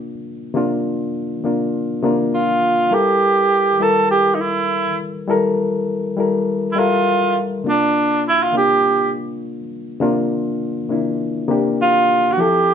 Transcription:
Already playing: C3 A#3 D4 F4
0.54 C3 A#3 D4 F4
1.44 C3 A#3 D4 F4
2.02 C3 A#3 D4 F4
2.34 F4
2.90 G3 E4 G4 A4 A#4
3.79 G3 E4 A4 A#4
4.11 G4
4.35 D#4
4.41 E4
5.27 G3 E4 A4 A#4
6.17 G3 E4 A4 A#4
6.72 G3 E4
6.76 F4 A4 A#4 E5
7.64 C3 A#3 D4 F4
7.69 D4
8.28 E4
8.43 F4
8.52 C3 A#3 D4 F4
8.57 G4
10.00 C3 A#3 D4 F4
10.89 C3 A#3 D4 E4
11.48 C3 A#3 D4 G4
11.82 F4
12.32 F#4
12.37 F3 C4 E4 G4 A4

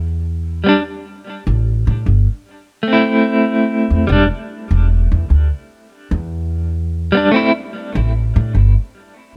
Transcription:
Already playing: E2
0.64 G3 B3
0.69 D4
1.47 A1
1.87 A2
2.06 G1
2.83 A3
2.88 C4
2.93 E4
3.90 E2
4.07 E1 G3 B3
4.12 D4
4.71 E1
5.12 E2
5.30 D2
6.11 E2
7.12 G3 B3
7.17 D4
7.31 A3 C4
7.36 E4
7.95 A1
8.36 A2
8.55 G1

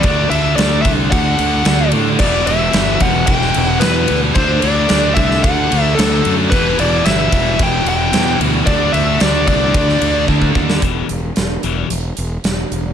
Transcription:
0.00 D3 A3 D5, kick, ride
0.04 D2 D4
0.30 D2 D3 A3 D4 E5, ride
0.56 D2 D3 A3 D4 D5, snare, ride
0.82 C2 D3 E5, kick, ride
0.86 A3 D4
1.11 D2 D3 A3 D4 F#5, kick, ride
1.39 D2 D3 A3 D4, ride
1.65 D2 D3 A3 D4, snare, ride
1.92 A2 D3 A3 D4, ride
2.19 E1 E2 B2 E3 D5, kick, crash
2.47 E1 E2 B2 E3 E5, ride
2.73 G1 E2 B2 E3, snare, ride
3.00 E1 E2 B2 E3 F#5, kick, ride
3.26 E1 E2 B2 G5, kick, ride
3.31 E3
3.42 snare
3.54 E1 E2 B2 E3, ride
3.67 F#5
3.80 E2 B4, snare, ride
3.84 E2 B2 E3
4.08 D2 E2 B2, ride
4.12 E3
4.35 D2 D3 A3 D4 C5, kick, ride
4.60 D2 D3 D5, ride
4.64 A3 D4
4.89 D2 D3 A3 D4, snare, ride
5.14 C2 D3 A3 E5, kick, ride
5.19 D4
5.31 snare
5.43 D2 D3 A3 D4 F#5, kick, ride
5.70 D2 D3 A3 D4, ride
5.95 D2 D3 A4, ride
5.99 A3 D4, snare
6.25 F#2 D3 A3 D4, ride
6.50 E1 E2 B4, kick, ride
6.54 B2 E3
6.78 E1 E2 B2 E3 D5, ride
7.05 G1 E2 B2 E3 E5, snare, ride
7.32 E1 E2 B2 E3, kick, ride
7.59 E1 E2 B2 E3 G5, kick, ride
7.85 E1 E2 B2 E3 G5, ride
8.12 E2 B2 E3, snare, ride
8.39 D2 E2 B2 E3, ride
8.65 D2 D3 A3 D4 D5, kick, ride
8.92 D2 D3 A3 D4 E5, ride
9.20 D2 D3 A3 D4 D5, snare, ride
9.47 C2 D3 A3 D4 D5, kick, ride
9.74 D2 D3 A3 D4, kick, ride
9.89 snare
10.01 D2 D3 A3 D4, ride
10.28 D2 D3 A3 D4, kick
10.42 kick
10.55 D#2 D3 A3 D4, kick
10.70 snare
10.82 E1 E2 B2 E3, kick, closed hi-hat
11.09 E1, closed hi-hat
11.36 E1, snare, closed hi-hat
11.63 E1 E2 B2 E3, closed hi-hat
11.90 E1, closed hi-hat
12.17 E1, closed hi-hat
12.44 E1, snare, closed hi-hat
12.71 E1, closed hi-hat

